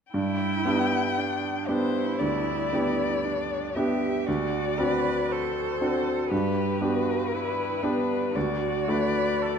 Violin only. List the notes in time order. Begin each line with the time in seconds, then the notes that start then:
0.13 G5
1.67 C5
2.19 D5
3.75 E5
4.26 D5
5.32 C5
6.32 B4
8.35 D5